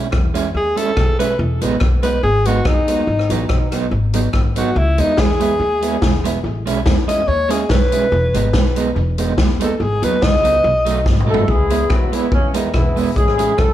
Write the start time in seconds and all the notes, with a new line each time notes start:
0.11 E2, muted clean electric guitar stroke, kick, cross-stick
0.34 G#3 C#4 E4, closed hi-hat
0.53 D#2 G#4, muted clean electric guitar stroke
0.76 G#3 C#4 E4 A4, closed hi-hat
0.97 B1, kick, cross-stick
1.19 G#3 C#4 E4 B4, closed hi-hat
1.39 E1
1.61 A1 G#3 B3 D#4, closed hi-hat
1.80 B1, muted clean electric guitar stroke, kick, cross-stick
2.03 G#3 B3 D#4 B4, closed hi-hat
2.23 G#1 G#4, muted clean electric guitar stroke
2.45 G#3 B3 D#4 F#4, closed hi-hat
2.65 D#2 D#4, kick, cross-stick
2.88 G#3 B3 D#4, closed hi-hat
3.07 G#1
3.19 cross-stick
3.30 A1 F#3 B3 D#4, closed hi-hat
3.49 B1, muted clean electric guitar stroke, kick, cross-stick
3.72 F#3 B3 D#4, cross-stick, closed hi-hat
3.91 G#1, muted clean electric guitar stroke
4.13 F#3 B3 D#4, closed hi-hat
4.33 G#1, kick, cross-stick
4.56 F#3 B3 D#4 F#4, closed hi-hat
4.76 C#2 E4
4.98 D#2 G#3 B3 D#4 E4, closed hi-hat
5.17 E2 G#4, muted clean electric guitar stroke, kick, snare
5.40 G#3 B3 E4, closed hi-hat
5.60 D#2, muted clean electric guitar stroke
5.82 G#3 B3 E4, closed hi-hat
6.02 E1, kick, snare
6.24 G#3 B3 E4, closed hi-hat
6.44 A1
6.66 B1 G#3 C#4 E4, closed hi-hat
6.86 E2, muted clean electric guitar stroke, kick, snare
7.08 G#3 C#4 E4 D#5, closed hi-hat
7.28 D#2 C#5, muted clean electric guitar stroke
7.49 G#3 C#4 E4 G#4, closed hi-hat
7.69 B1 B4, kick, snare
7.92 G#3 C#4 E4, closed hi-hat
8.12 E1
8.34 G#1 G#3 B3 D#4, closed hi-hat
8.53 B1, muted clean electric guitar stroke, kick, snare
8.76 G#3 B3 D#4, closed hi-hat
8.96 E1, muted clean electric guitar stroke
9.18 G#3 B3 D#4, closed hi-hat
9.38 D#2, kick, snare
9.60 G#3 B3 D#4 A4, closed hi-hat
9.76 G#1 A4
9.82 G#4
10.02 D#2 F#3 B3 D#4 B4, closed hi-hat
10.21 C#2 D#5, muted clean electric guitar stroke, kick, snare
10.43 F#3 B3 D#4, closed hi-hat
10.63 B1, muted clean electric guitar stroke
10.85 F#3 A3 D#4, closed hi-hat
11.06 G#1, kick, snare
11.20 mid tom
11.27 F#3 A3 D#4 A4
11.34 floor tom
11.48 C#2 G#3 B3 E4 G#4, kick
11.70 G#3 B3 E4, closed hi-hat
11.90 D#2 F#3 F#4, muted clean electric guitar stroke, kick, cross-stick
12.12 E3 G#3 B3 E4, closed hi-hat
12.32 E2 C#3 E3 G#3 C#4, muted clean electric guitar stroke, kick
12.54 D#3 G#3 B3 D#4 E4, closed hi-hat
12.74 E1 E3 G#3 B3 E4, kick, cross-stick
12.96 G#3 B3 E4, open hi-hat
13.16 A1 G#3 C#4 E4 G#4, kick, hi-hat pedal
13.28 cross-stick
13.38 G#3 C#4 E4, closed hi-hat
13.57 C#2 A3 C#4 E4 A4, muted clean electric guitar stroke, kick, cross-stick